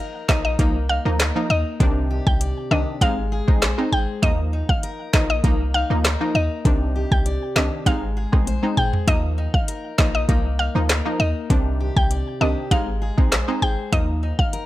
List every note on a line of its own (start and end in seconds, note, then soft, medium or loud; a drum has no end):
0.00 0.22 F3 medium
0.00 0.22 A#3 medium
0.00 0.22 D#4 loud
0.00 0.28 D#4 medium
0.00 1.18 A#4 medium
0.29 0.55 A#1 medium
0.29 0.57 F3 medium
0.29 0.57 A#3 medium
0.29 0.89 D#4 medium
0.29 0.57 D#4 medium
0.29 0.41 D#5 medium
0.29 kick medium
0.29 snare loud
0.29 clap medium
0.45 0.55 D#5 medium
0.59 0.99 C2 loud
0.59 0.76 F3 medium
0.59 1.87 A#3 medium
0.59 0.77 A#3 medium
0.59 0.77 D#4 loud
0.59 kick loud
0.59 closed hi-hat medium
0.89 1.50 D#4 medium
0.89 1.01 F5 medium
1.05 1.32 D2 loud
1.05 1.21 F3 medium
1.05 1.21 A#3 medium
1.05 1.21 D#4 medium
1.20 1.87 A#4 medium
1.20 snare loud
1.20 clap medium
1.20 closed hi-hat medium
1.36 1.51 F3 medium
1.36 1.51 A#3 medium
1.36 1.52 D#4 medium
1.50 1.64 D#2 loud
1.50 2.44 D#4 medium
1.50 1.62 D#5 medium
1.80 2.20 C2 loud
1.80 3.08 C3 medium
1.80 2.64 D#3 loud
1.80 2.64 C4 medium
1.80 2.65 D4 loud
1.80 kick loud
1.80 closed hi-hat medium
2.11 2.70 G4 medium
2.27 2.53 C2 medium
2.27 2.37 G5 medium
2.27 kick medium
2.41 3.08 D5 medium
2.41 closed hi-hat medium
2.71 2.85 C2 medium
2.71 2.99 D#3 medium
2.71 2.99 C4 medium
2.71 2.99 D4 medium
2.71 2.83 D#5 medium
3.01 3.42 G#1 loud
3.01 3.19 G#3 medium
3.01 4.29 G#3 medium
3.01 3.19 C4 medium
3.01 3.19 D#4 loud
3.01 3.45 F5 loud
3.01 kick loud
3.01 closed hi-hat medium
3.32 3.91 G#4 medium
3.48 3.74 A#1 loud
3.48 3.63 G#3 medium
3.48 3.64 C4 medium
3.48 3.64 D#4 medium
3.48 kick medium
3.62 4.29 C5 medium
3.62 snare loud
3.62 clap medium
3.62 closed hi-hat medium
3.78 3.94 G#3 medium
3.78 3.94 C4 medium
3.78 3.94 D#4 medium
3.92 4.06 G#1 medium
3.92 4.29 G#4 medium
3.92 4.04 G5 medium
4.22 4.63 D#2 loud
4.22 5.07 F3 medium
4.22 5.07 A#3 medium
4.22 5.07 D#4 loud
4.22 4.35 D#5 loud
4.22 kick loud
4.22 closed hi-hat medium
4.53 5.13 D#4 medium
4.69 4.81 G#1 medium
4.69 4.80 F5 medium
4.69 kick medium
4.83 6.03 A#4 medium
4.83 closed hi-hat medium
5.13 5.40 A#1 medium
5.13 5.42 F3 medium
5.13 5.42 A#3 medium
5.13 5.74 D#4 medium
5.13 5.42 D#4 medium
5.13 5.26 D#5 medium
5.13 kick medium
5.13 snare loud
5.13 clap medium
5.30 5.40 D#5 medium
5.44 5.84 C2 loud
5.44 5.61 F3 medium
5.44 6.72 A#3 medium
5.44 5.61 A#3 medium
5.44 5.61 D#4 loud
5.44 kick loud
5.44 closed hi-hat medium
5.74 6.34 D#4 medium
5.74 5.86 F5 medium
5.90 6.16 D2 loud
5.90 6.06 F3 medium
5.90 6.06 A#3 medium
5.90 6.06 D#4 medium
6.04 6.72 A#4 medium
6.04 snare loud
6.04 clap medium
6.04 closed hi-hat medium
6.20 6.36 F3 medium
6.20 6.36 A#3 medium
6.20 6.36 D#4 medium
6.35 6.49 D#2 loud
6.35 7.29 D#4 medium
6.35 6.47 D#5 medium
6.65 7.05 C2 loud
6.65 7.93 C3 medium
6.65 7.49 D#3 medium
6.65 7.49 C4 medium
6.65 7.49 D4 loud
6.65 kick loud
6.65 closed hi-hat medium
6.96 7.55 G4 medium
7.12 7.38 C2 medium
7.12 7.22 G5 medium
7.12 kick medium
7.26 7.93 D5 medium
7.26 closed hi-hat medium
7.56 7.70 C2 medium
7.56 7.84 D#3 medium
7.56 7.84 C4 medium
7.56 7.84 D4 medium
7.56 7.68 D#5 medium
7.56 snare loud
7.56 clap medium
7.86 8.26 G#1 loud
7.86 8.04 G#3 medium
7.86 9.14 G#3 medium
7.86 8.04 C4 medium
7.86 8.04 D#4 loud
7.86 8.30 F5 loud
7.86 kick loud
7.86 closed hi-hat medium
8.17 8.76 G#4 medium
8.32 8.59 A#1 loud
8.32 8.48 G#3 medium
8.32 8.48 C4 medium
8.32 8.49 D#4 medium
8.32 kick medium
8.32 cross-stick medium
8.47 9.14 C5 medium
8.47 closed hi-hat medium
8.47 high tom medium
8.63 8.79 G#3 medium
8.63 8.79 C4 medium
8.63 8.79 D#4 medium
8.77 8.91 G#1 loud
8.77 9.14 G#4 medium
8.77 8.89 G5 medium
8.77 mid tom medium
8.93 floor tom medium
9.07 9.48 D#2 loud
9.07 9.92 F3 medium
9.07 9.92 A#3 medium
9.07 9.92 D#4 loud
9.07 9.20 D#5 loud
9.07 kick loud
9.07 closed hi-hat medium
9.38 9.98 D#4 medium
9.54 9.66 G#1 medium
9.54 9.65 F5 medium
9.54 kick medium
9.68 10.88 A#4 medium
9.68 closed hi-hat medium
9.98 10.25 A#1 loud
9.98 10.26 F3 medium
9.98 10.27 A#3 medium
9.98 10.59 D#4 medium
9.98 10.27 D#4 medium
9.98 10.11 D#5 medium
9.98 kick loud
9.98 snare loud
9.98 clap medium
10.15 10.25 D#5 medium
10.29 10.69 C2 loud
10.29 10.46 F3 medium
10.29 11.56 A#3 medium
10.29 10.46 A#3 medium
10.29 10.46 D#4 loud
10.29 kick loud
10.29 closed hi-hat medium
10.59 11.19 D#4 medium
10.59 10.71 F5 medium
10.75 11.01 D2 loud
10.75 10.91 F3 medium
10.75 10.91 A#3 medium
10.75 10.91 D#4 medium
10.89 11.56 A#4 medium
10.89 snare loud
10.89 clap medium
10.89 closed hi-hat medium
11.05 11.21 F3 medium
11.05 11.21 A#3 medium
11.05 11.21 D#4 medium
11.20 11.34 D#2 loud
11.20 12.14 D#4 medium
11.20 11.32 D#5 medium
11.50 11.90 C2 loud
11.50 12.78 C3 medium
11.50 12.34 D#3 medium
11.50 12.34 C4 medium
11.50 12.34 D4 loud
11.50 kick loud
11.50 closed hi-hat medium
11.80 12.40 G4 medium
11.97 12.23 C2 medium
11.97 12.07 G5 medium
11.97 kick medium
12.11 12.78 D5 medium
12.11 closed hi-hat medium
12.41 12.55 C2 loud
12.41 12.69 D#3 medium
12.41 12.69 C4 medium
12.41 12.69 D4 medium
12.41 12.78 G4 medium
12.41 12.53 D#5 medium
12.71 13.11 G#1 loud
12.71 12.88 G#3 loud
12.71 13.99 G#3 medium
12.71 12.89 C4 medium
12.71 12.89 D#4 loud
12.71 13.15 F5 loud
12.71 kick loud
12.71 closed hi-hat medium
13.02 13.61 G#4 medium
13.17 13.44 A#1 loud
13.17 13.33 G#3 medium
13.17 13.33 C4 medium
13.17 13.33 D#4 medium
13.17 kick medium
13.32 13.99 C5 medium
13.32 snare loud
13.32 clap medium
13.32 closed hi-hat medium
13.48 13.63 G#3 medium
13.48 13.64 C4 medium
13.48 13.64 D#4 medium
13.62 13.76 G#1 loud
13.62 13.99 G#4 medium
13.62 13.74 G5 medium
13.92 14.33 D#2 loud
13.92 14.66 F3 medium
13.92 14.66 A#3 medium
13.92 14.66 D#4 loud
13.92 14.05 D#5 loud
13.92 kick loud
13.92 closed hi-hat medium
14.23 14.66 D#4 medium
14.39 14.51 G#1 loud
14.39 14.49 F5 medium
14.39 kick medium
14.53 14.66 A#4 medium
14.53 closed hi-hat medium